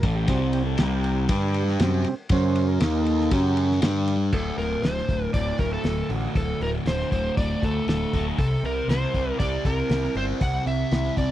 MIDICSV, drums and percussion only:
0, 0, Header, 1, 2, 480
1, 0, Start_track
1, 0, Tempo, 506329
1, 276, Time_signature, 4, 2, 24, 8
1, 10726, End_track
2, 0, Start_track
2, 0, Title_t, "Drums"
2, 28, Note_on_c, 9, 51, 78
2, 29, Note_on_c, 9, 36, 100
2, 123, Note_off_c, 9, 51, 0
2, 124, Note_off_c, 9, 36, 0
2, 263, Note_on_c, 9, 51, 100
2, 267, Note_on_c, 9, 36, 104
2, 357, Note_off_c, 9, 51, 0
2, 361, Note_off_c, 9, 36, 0
2, 501, Note_on_c, 9, 51, 75
2, 596, Note_off_c, 9, 51, 0
2, 736, Note_on_c, 9, 51, 86
2, 747, Note_on_c, 9, 38, 109
2, 830, Note_off_c, 9, 51, 0
2, 842, Note_off_c, 9, 38, 0
2, 985, Note_on_c, 9, 51, 66
2, 1079, Note_off_c, 9, 51, 0
2, 1221, Note_on_c, 9, 51, 104
2, 1224, Note_on_c, 9, 36, 112
2, 1316, Note_off_c, 9, 51, 0
2, 1319, Note_off_c, 9, 36, 0
2, 1462, Note_on_c, 9, 51, 68
2, 1557, Note_off_c, 9, 51, 0
2, 1595, Note_on_c, 9, 38, 34
2, 1689, Note_off_c, 9, 38, 0
2, 1701, Note_on_c, 9, 51, 90
2, 1713, Note_on_c, 9, 38, 103
2, 1796, Note_off_c, 9, 51, 0
2, 1807, Note_off_c, 9, 38, 0
2, 1938, Note_on_c, 9, 51, 66
2, 2032, Note_off_c, 9, 51, 0
2, 2173, Note_on_c, 9, 51, 94
2, 2182, Note_on_c, 9, 36, 102
2, 2268, Note_off_c, 9, 51, 0
2, 2277, Note_off_c, 9, 36, 0
2, 2422, Note_on_c, 9, 51, 72
2, 2517, Note_off_c, 9, 51, 0
2, 2658, Note_on_c, 9, 51, 87
2, 2669, Note_on_c, 9, 38, 106
2, 2753, Note_off_c, 9, 51, 0
2, 2764, Note_off_c, 9, 38, 0
2, 2904, Note_on_c, 9, 51, 69
2, 2999, Note_off_c, 9, 51, 0
2, 3039, Note_on_c, 9, 38, 30
2, 3134, Note_off_c, 9, 38, 0
2, 3140, Note_on_c, 9, 51, 103
2, 3142, Note_on_c, 9, 36, 115
2, 3235, Note_off_c, 9, 51, 0
2, 3237, Note_off_c, 9, 36, 0
2, 3383, Note_on_c, 9, 51, 74
2, 3478, Note_off_c, 9, 51, 0
2, 3520, Note_on_c, 9, 38, 32
2, 3615, Note_off_c, 9, 38, 0
2, 3620, Note_on_c, 9, 51, 98
2, 3632, Note_on_c, 9, 38, 113
2, 3715, Note_off_c, 9, 51, 0
2, 3726, Note_off_c, 9, 38, 0
2, 3864, Note_on_c, 9, 51, 74
2, 3958, Note_off_c, 9, 51, 0
2, 4100, Note_on_c, 9, 49, 96
2, 4104, Note_on_c, 9, 36, 98
2, 4195, Note_off_c, 9, 49, 0
2, 4198, Note_off_c, 9, 36, 0
2, 4348, Note_on_c, 9, 46, 48
2, 4443, Note_off_c, 9, 46, 0
2, 4583, Note_on_c, 9, 46, 58
2, 4595, Note_on_c, 9, 38, 99
2, 4678, Note_off_c, 9, 46, 0
2, 4689, Note_off_c, 9, 38, 0
2, 4723, Note_on_c, 9, 38, 32
2, 4818, Note_off_c, 9, 38, 0
2, 4823, Note_on_c, 9, 36, 74
2, 4826, Note_on_c, 9, 46, 46
2, 4918, Note_off_c, 9, 36, 0
2, 4921, Note_off_c, 9, 46, 0
2, 5060, Note_on_c, 9, 46, 68
2, 5061, Note_on_c, 9, 36, 99
2, 5155, Note_off_c, 9, 46, 0
2, 5156, Note_off_c, 9, 36, 0
2, 5294, Note_on_c, 9, 46, 47
2, 5300, Note_on_c, 9, 36, 82
2, 5388, Note_off_c, 9, 46, 0
2, 5395, Note_off_c, 9, 36, 0
2, 5534, Note_on_c, 9, 46, 64
2, 5546, Note_on_c, 9, 38, 99
2, 5629, Note_off_c, 9, 46, 0
2, 5641, Note_off_c, 9, 38, 0
2, 5782, Note_on_c, 9, 46, 49
2, 5876, Note_off_c, 9, 46, 0
2, 6024, Note_on_c, 9, 36, 98
2, 6027, Note_on_c, 9, 46, 67
2, 6119, Note_off_c, 9, 36, 0
2, 6122, Note_off_c, 9, 46, 0
2, 6269, Note_on_c, 9, 46, 51
2, 6364, Note_off_c, 9, 46, 0
2, 6505, Note_on_c, 9, 46, 61
2, 6516, Note_on_c, 9, 38, 99
2, 6599, Note_off_c, 9, 46, 0
2, 6611, Note_off_c, 9, 38, 0
2, 6637, Note_on_c, 9, 38, 33
2, 6732, Note_off_c, 9, 38, 0
2, 6748, Note_on_c, 9, 36, 69
2, 6752, Note_on_c, 9, 46, 47
2, 6843, Note_off_c, 9, 36, 0
2, 6847, Note_off_c, 9, 46, 0
2, 6990, Note_on_c, 9, 36, 106
2, 6993, Note_on_c, 9, 46, 75
2, 7085, Note_off_c, 9, 36, 0
2, 7088, Note_off_c, 9, 46, 0
2, 7231, Note_on_c, 9, 36, 76
2, 7236, Note_on_c, 9, 46, 52
2, 7326, Note_off_c, 9, 36, 0
2, 7330, Note_off_c, 9, 46, 0
2, 7469, Note_on_c, 9, 46, 71
2, 7481, Note_on_c, 9, 38, 103
2, 7564, Note_off_c, 9, 46, 0
2, 7575, Note_off_c, 9, 38, 0
2, 7710, Note_on_c, 9, 36, 72
2, 7712, Note_on_c, 9, 46, 53
2, 7805, Note_off_c, 9, 36, 0
2, 7807, Note_off_c, 9, 46, 0
2, 7949, Note_on_c, 9, 46, 71
2, 7950, Note_on_c, 9, 36, 94
2, 8044, Note_off_c, 9, 36, 0
2, 8044, Note_off_c, 9, 46, 0
2, 8198, Note_on_c, 9, 46, 49
2, 8293, Note_off_c, 9, 46, 0
2, 8431, Note_on_c, 9, 46, 65
2, 8443, Note_on_c, 9, 38, 88
2, 8526, Note_off_c, 9, 46, 0
2, 8538, Note_off_c, 9, 38, 0
2, 8558, Note_on_c, 9, 38, 32
2, 8653, Note_off_c, 9, 38, 0
2, 8667, Note_on_c, 9, 36, 71
2, 8669, Note_on_c, 9, 46, 44
2, 8762, Note_off_c, 9, 36, 0
2, 8763, Note_off_c, 9, 46, 0
2, 8909, Note_on_c, 9, 36, 105
2, 8909, Note_on_c, 9, 46, 65
2, 9004, Note_off_c, 9, 36, 0
2, 9004, Note_off_c, 9, 46, 0
2, 9148, Note_on_c, 9, 36, 74
2, 9150, Note_on_c, 9, 46, 50
2, 9243, Note_off_c, 9, 36, 0
2, 9244, Note_off_c, 9, 46, 0
2, 9381, Note_on_c, 9, 46, 68
2, 9392, Note_on_c, 9, 38, 94
2, 9476, Note_off_c, 9, 46, 0
2, 9487, Note_off_c, 9, 38, 0
2, 9515, Note_on_c, 9, 38, 29
2, 9610, Note_off_c, 9, 38, 0
2, 9625, Note_on_c, 9, 46, 49
2, 9720, Note_off_c, 9, 46, 0
2, 9867, Note_on_c, 9, 46, 64
2, 9870, Note_on_c, 9, 36, 99
2, 9961, Note_off_c, 9, 46, 0
2, 9965, Note_off_c, 9, 36, 0
2, 10117, Note_on_c, 9, 46, 50
2, 10212, Note_off_c, 9, 46, 0
2, 10346, Note_on_c, 9, 46, 65
2, 10358, Note_on_c, 9, 38, 93
2, 10441, Note_off_c, 9, 46, 0
2, 10452, Note_off_c, 9, 38, 0
2, 10485, Note_on_c, 9, 38, 31
2, 10580, Note_off_c, 9, 38, 0
2, 10587, Note_on_c, 9, 46, 46
2, 10591, Note_on_c, 9, 36, 70
2, 10681, Note_off_c, 9, 46, 0
2, 10686, Note_off_c, 9, 36, 0
2, 10726, End_track
0, 0, End_of_file